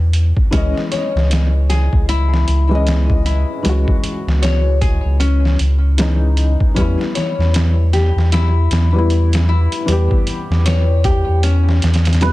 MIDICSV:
0, 0, Header, 1, 6, 480
1, 0, Start_track
1, 0, Key_signature, 4, "minor"
1, 0, Tempo, 779221
1, 324, Time_signature, 4, 2, 24, 8
1, 7592, End_track
2, 0, Start_track
2, 0, Title_t, "Hammered dulcimer"
2, 0, Program_c, 0, 15
2, 7529, Note_on_c, 0, 71, 76
2, 7592, Note_off_c, 0, 71, 0
2, 7592, End_track
3, 0, Start_track
3, 0, Title_t, "Nylon-string guitar"
3, 0, Program_c, 1, 24
3, 325, Note_on_c, 1, 61, 97
3, 480, Note_off_c, 1, 61, 0
3, 564, Note_on_c, 1, 73, 69
3, 794, Note_off_c, 1, 73, 0
3, 1044, Note_on_c, 1, 68, 88
3, 1264, Note_off_c, 1, 68, 0
3, 1287, Note_on_c, 1, 64, 98
3, 1986, Note_off_c, 1, 64, 0
3, 2006, Note_on_c, 1, 64, 66
3, 2235, Note_off_c, 1, 64, 0
3, 2725, Note_on_c, 1, 73, 95
3, 2945, Note_off_c, 1, 73, 0
3, 2964, Note_on_c, 1, 68, 86
3, 3184, Note_off_c, 1, 68, 0
3, 3202, Note_on_c, 1, 61, 95
3, 3433, Note_off_c, 1, 61, 0
3, 4166, Note_on_c, 1, 61, 91
3, 4320, Note_off_c, 1, 61, 0
3, 4405, Note_on_c, 1, 73, 70
3, 4634, Note_off_c, 1, 73, 0
3, 4886, Note_on_c, 1, 67, 99
3, 5105, Note_off_c, 1, 67, 0
3, 5127, Note_on_c, 1, 64, 89
3, 5826, Note_off_c, 1, 64, 0
3, 5844, Note_on_c, 1, 64, 69
3, 6074, Note_off_c, 1, 64, 0
3, 6565, Note_on_c, 1, 73, 96
3, 6785, Note_off_c, 1, 73, 0
3, 6804, Note_on_c, 1, 67, 95
3, 7024, Note_off_c, 1, 67, 0
3, 7043, Note_on_c, 1, 61, 97
3, 7274, Note_off_c, 1, 61, 0
3, 7592, End_track
4, 0, Start_track
4, 0, Title_t, "Felt piano"
4, 0, Program_c, 2, 0
4, 0, Control_c, 2, 64, 127
4, 314, Note_on_c, 2, 52, 78
4, 327, Note_on_c, 2, 56, 70
4, 332, Control_c, 2, 64, 0
4, 340, Note_on_c, 2, 61, 70
4, 352, Note_on_c, 2, 75, 87
4, 430, Control_c, 2, 64, 127
4, 1627, Note_off_c, 2, 52, 0
4, 1633, Note_off_c, 2, 56, 0
4, 1640, Note_off_c, 2, 61, 0
4, 1646, Note_off_c, 2, 75, 0
4, 1656, Note_on_c, 2, 52, 86
4, 1669, Note_on_c, 2, 56, 86
4, 1683, Note_on_c, 2, 61, 82
4, 1694, Note_on_c, 2, 75, 95
4, 2216, Note_off_c, 2, 52, 0
4, 2222, Note_off_c, 2, 56, 0
4, 2229, Note_off_c, 2, 61, 0
4, 2235, Note_off_c, 2, 75, 0
4, 2235, Note_on_c, 2, 52, 86
4, 2248, Note_on_c, 2, 56, 79
4, 2261, Note_on_c, 2, 61, 78
4, 2274, Note_on_c, 2, 66, 97
4, 3656, Note_off_c, 2, 52, 0
4, 3662, Note_off_c, 2, 56, 0
4, 3669, Note_off_c, 2, 61, 0
4, 3675, Note_off_c, 2, 66, 0
4, 3682, Note_on_c, 2, 52, 72
4, 3689, Note_on_c, 2, 56, 72
4, 3695, Note_on_c, 2, 61, 72
4, 3703, Note_on_c, 2, 63, 82
4, 4140, Note_off_c, 2, 52, 0
4, 4143, Note_off_c, 2, 56, 0
4, 4146, Note_off_c, 2, 61, 0
4, 4150, Note_off_c, 2, 63, 0
4, 4154, Note_on_c, 2, 52, 79
4, 4166, Note_on_c, 2, 55, 73
4, 4170, Control_c, 2, 64, 0
4, 4179, Note_on_c, 2, 59, 68
4, 4193, Note_on_c, 2, 64, 93
4, 4281, Control_c, 2, 64, 127
4, 5467, Note_off_c, 2, 52, 0
4, 5473, Note_off_c, 2, 55, 0
4, 5480, Note_off_c, 2, 59, 0
4, 5486, Note_off_c, 2, 64, 0
4, 5497, Note_on_c, 2, 52, 90
4, 5510, Note_on_c, 2, 55, 83
4, 5523, Note_on_c, 2, 59, 80
4, 5534, Note_on_c, 2, 64, 103
4, 6056, Note_off_c, 2, 52, 0
4, 6062, Note_off_c, 2, 55, 0
4, 6069, Note_off_c, 2, 59, 0
4, 6072, Note_on_c, 2, 52, 85
4, 6075, Note_off_c, 2, 64, 0
4, 6084, Note_on_c, 2, 55, 80
4, 6098, Note_on_c, 2, 59, 83
4, 6110, Note_on_c, 2, 67, 104
4, 7494, Note_off_c, 2, 52, 0
4, 7500, Note_off_c, 2, 55, 0
4, 7508, Note_off_c, 2, 59, 0
4, 7514, Note_off_c, 2, 67, 0
4, 7522, Note_on_c, 2, 52, 79
4, 7528, Note_on_c, 2, 55, 67
4, 7536, Note_on_c, 2, 59, 74
4, 7541, Note_on_c, 2, 64, 83
4, 7592, Note_off_c, 2, 52, 0
4, 7592, Note_off_c, 2, 55, 0
4, 7592, Note_off_c, 2, 59, 0
4, 7592, Note_off_c, 2, 64, 0
4, 7592, End_track
5, 0, Start_track
5, 0, Title_t, "Sub bass"
5, 0, Program_c, 3, 38
5, 0, Note_on_c, 3, 40, 96
5, 200, Note_off_c, 3, 40, 0
5, 325, Note_on_c, 3, 37, 104
5, 449, Note_off_c, 3, 37, 0
5, 709, Note_on_c, 3, 37, 76
5, 1160, Note_off_c, 3, 37, 0
5, 1188, Note_on_c, 3, 37, 97
5, 1506, Note_off_c, 3, 37, 0
5, 1526, Note_on_c, 3, 37, 97
5, 2120, Note_off_c, 3, 37, 0
5, 2248, Note_on_c, 3, 37, 98
5, 2371, Note_off_c, 3, 37, 0
5, 2628, Note_on_c, 3, 37, 74
5, 3080, Note_off_c, 3, 37, 0
5, 3109, Note_on_c, 3, 37, 99
5, 3426, Note_off_c, 3, 37, 0
5, 3448, Note_on_c, 3, 37, 94
5, 4041, Note_off_c, 3, 37, 0
5, 4167, Note_on_c, 3, 40, 105
5, 4290, Note_off_c, 3, 40, 0
5, 4547, Note_on_c, 3, 40, 83
5, 4999, Note_off_c, 3, 40, 0
5, 5025, Note_on_c, 3, 40, 95
5, 5345, Note_off_c, 3, 40, 0
5, 5365, Note_on_c, 3, 40, 98
5, 5959, Note_off_c, 3, 40, 0
5, 6084, Note_on_c, 3, 40, 103
5, 6209, Note_off_c, 3, 40, 0
5, 6467, Note_on_c, 3, 40, 79
5, 6919, Note_off_c, 3, 40, 0
5, 6951, Note_on_c, 3, 40, 99
5, 7267, Note_off_c, 3, 40, 0
5, 7286, Note_on_c, 3, 40, 92
5, 7522, Note_off_c, 3, 40, 0
5, 7526, Note_on_c, 3, 40, 99
5, 7592, Note_off_c, 3, 40, 0
5, 7592, End_track
6, 0, Start_track
6, 0, Title_t, "Drums"
6, 83, Note_on_c, 9, 42, 61
6, 144, Note_off_c, 9, 42, 0
6, 226, Note_on_c, 9, 36, 96
6, 287, Note_off_c, 9, 36, 0
6, 324, Note_on_c, 9, 36, 106
6, 324, Note_on_c, 9, 42, 87
6, 385, Note_off_c, 9, 36, 0
6, 385, Note_off_c, 9, 42, 0
6, 477, Note_on_c, 9, 38, 45
6, 539, Note_off_c, 9, 38, 0
6, 565, Note_on_c, 9, 42, 63
6, 576, Note_on_c, 9, 38, 48
6, 626, Note_off_c, 9, 42, 0
6, 637, Note_off_c, 9, 38, 0
6, 720, Note_on_c, 9, 38, 40
6, 781, Note_off_c, 9, 38, 0
6, 807, Note_on_c, 9, 42, 83
6, 818, Note_on_c, 9, 38, 105
6, 869, Note_off_c, 9, 42, 0
6, 880, Note_off_c, 9, 38, 0
6, 1047, Note_on_c, 9, 42, 63
6, 1058, Note_on_c, 9, 38, 36
6, 1108, Note_off_c, 9, 42, 0
6, 1120, Note_off_c, 9, 38, 0
6, 1187, Note_on_c, 9, 36, 91
6, 1249, Note_off_c, 9, 36, 0
6, 1287, Note_on_c, 9, 42, 85
6, 1348, Note_off_c, 9, 42, 0
6, 1439, Note_on_c, 9, 38, 50
6, 1500, Note_off_c, 9, 38, 0
6, 1526, Note_on_c, 9, 42, 63
6, 1587, Note_off_c, 9, 42, 0
6, 1766, Note_on_c, 9, 42, 85
6, 1777, Note_on_c, 9, 38, 113
6, 1827, Note_off_c, 9, 42, 0
6, 1838, Note_off_c, 9, 38, 0
6, 1908, Note_on_c, 9, 36, 97
6, 1970, Note_off_c, 9, 36, 0
6, 2007, Note_on_c, 9, 42, 65
6, 2069, Note_off_c, 9, 42, 0
6, 2247, Note_on_c, 9, 42, 89
6, 2308, Note_off_c, 9, 42, 0
6, 2389, Note_on_c, 9, 36, 84
6, 2450, Note_off_c, 9, 36, 0
6, 2486, Note_on_c, 9, 42, 69
6, 2548, Note_off_c, 9, 42, 0
6, 2639, Note_on_c, 9, 38, 49
6, 2701, Note_off_c, 9, 38, 0
6, 2728, Note_on_c, 9, 42, 83
6, 2739, Note_on_c, 9, 38, 105
6, 2789, Note_off_c, 9, 42, 0
6, 2800, Note_off_c, 9, 38, 0
6, 2967, Note_on_c, 9, 36, 91
6, 2967, Note_on_c, 9, 42, 59
6, 3028, Note_off_c, 9, 36, 0
6, 3029, Note_off_c, 9, 42, 0
6, 3206, Note_on_c, 9, 42, 85
6, 3268, Note_off_c, 9, 42, 0
6, 3359, Note_on_c, 9, 38, 39
6, 3421, Note_off_c, 9, 38, 0
6, 3445, Note_on_c, 9, 42, 63
6, 3507, Note_off_c, 9, 42, 0
6, 3684, Note_on_c, 9, 42, 84
6, 3696, Note_on_c, 9, 38, 109
6, 3746, Note_off_c, 9, 42, 0
6, 3757, Note_off_c, 9, 38, 0
6, 3925, Note_on_c, 9, 42, 67
6, 3986, Note_off_c, 9, 42, 0
6, 4068, Note_on_c, 9, 36, 101
6, 4130, Note_off_c, 9, 36, 0
6, 4166, Note_on_c, 9, 36, 105
6, 4166, Note_on_c, 9, 42, 92
6, 4228, Note_off_c, 9, 36, 0
6, 4228, Note_off_c, 9, 42, 0
6, 4319, Note_on_c, 9, 38, 48
6, 4380, Note_off_c, 9, 38, 0
6, 4406, Note_on_c, 9, 42, 69
6, 4417, Note_on_c, 9, 38, 51
6, 4468, Note_off_c, 9, 42, 0
6, 4479, Note_off_c, 9, 38, 0
6, 4561, Note_on_c, 9, 38, 39
6, 4623, Note_off_c, 9, 38, 0
6, 4646, Note_on_c, 9, 42, 81
6, 4657, Note_on_c, 9, 38, 118
6, 4708, Note_off_c, 9, 42, 0
6, 4719, Note_off_c, 9, 38, 0
6, 4887, Note_on_c, 9, 42, 54
6, 4898, Note_on_c, 9, 38, 40
6, 4949, Note_off_c, 9, 42, 0
6, 4960, Note_off_c, 9, 38, 0
6, 5041, Note_on_c, 9, 38, 35
6, 5103, Note_off_c, 9, 38, 0
6, 5127, Note_on_c, 9, 42, 75
6, 5138, Note_on_c, 9, 38, 99
6, 5188, Note_off_c, 9, 42, 0
6, 5199, Note_off_c, 9, 38, 0
6, 5365, Note_on_c, 9, 42, 74
6, 5376, Note_on_c, 9, 38, 95
6, 5427, Note_off_c, 9, 42, 0
6, 5438, Note_off_c, 9, 38, 0
6, 5606, Note_on_c, 9, 42, 59
6, 5668, Note_off_c, 9, 42, 0
6, 5748, Note_on_c, 9, 42, 74
6, 5759, Note_on_c, 9, 38, 101
6, 5809, Note_off_c, 9, 42, 0
6, 5820, Note_off_c, 9, 38, 0
6, 5988, Note_on_c, 9, 42, 63
6, 6050, Note_off_c, 9, 42, 0
6, 6087, Note_on_c, 9, 42, 87
6, 6149, Note_off_c, 9, 42, 0
6, 6227, Note_on_c, 9, 36, 89
6, 6289, Note_off_c, 9, 36, 0
6, 6325, Note_on_c, 9, 42, 65
6, 6387, Note_off_c, 9, 42, 0
6, 6478, Note_on_c, 9, 38, 49
6, 6540, Note_off_c, 9, 38, 0
6, 6565, Note_on_c, 9, 42, 83
6, 6576, Note_on_c, 9, 38, 109
6, 6626, Note_off_c, 9, 42, 0
6, 6637, Note_off_c, 9, 38, 0
6, 6802, Note_on_c, 9, 42, 63
6, 6803, Note_on_c, 9, 36, 88
6, 6864, Note_off_c, 9, 42, 0
6, 6865, Note_off_c, 9, 36, 0
6, 7042, Note_on_c, 9, 42, 89
6, 7103, Note_off_c, 9, 42, 0
6, 7199, Note_on_c, 9, 38, 39
6, 7260, Note_off_c, 9, 38, 0
6, 7282, Note_on_c, 9, 42, 66
6, 7293, Note_on_c, 9, 38, 83
6, 7344, Note_off_c, 9, 42, 0
6, 7353, Note_on_c, 9, 42, 59
6, 7355, Note_off_c, 9, 38, 0
6, 7364, Note_on_c, 9, 38, 82
6, 7415, Note_off_c, 9, 42, 0
6, 7425, Note_on_c, 9, 42, 72
6, 7426, Note_off_c, 9, 38, 0
6, 7436, Note_on_c, 9, 38, 91
6, 7470, Note_off_c, 9, 42, 0
6, 7470, Note_on_c, 9, 42, 67
6, 7482, Note_off_c, 9, 38, 0
6, 7482, Note_on_c, 9, 38, 87
6, 7521, Note_off_c, 9, 42, 0
6, 7521, Note_on_c, 9, 42, 87
6, 7532, Note_off_c, 9, 38, 0
6, 7532, Note_on_c, 9, 38, 114
6, 7583, Note_off_c, 9, 42, 0
6, 7592, Note_off_c, 9, 38, 0
6, 7592, End_track
0, 0, End_of_file